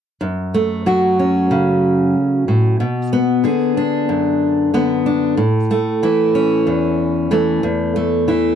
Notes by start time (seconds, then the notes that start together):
0.21 F#2
0.54 A3
0.86 F#3 F#4
1.19 C#4
1.51 C#3
2.48 A2
2.80 B2
3.13 B3
3.44 D3 G#4
3.77 D4
4.09 F#2
4.74 D3 B3
5.06 D4
5.37 A2
5.71 A3
6.03 E3 E4
6.35 C#4
6.67 E2
7.31 E3 A3
7.63 E2
7.96 A3
8.28 E3 E4